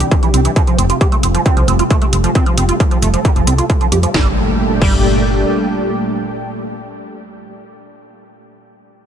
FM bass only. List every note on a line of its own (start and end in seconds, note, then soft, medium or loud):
0.34 0.48 C2 medium
0.79 0.93 F1 loud
1.23 1.38 F1 loud
1.57 1.64 C2 medium
1.68 1.83 F1 medium
2.13 2.27 F1 medium
2.58 2.72 F1 loud
3.02 3.17 F1 medium
3.36 3.43 F1 medium
3.47 3.62 C2 medium
3.92 4.06 F2 medium
4.14 4.27 G1 medium
4.82 5.45 G1 medium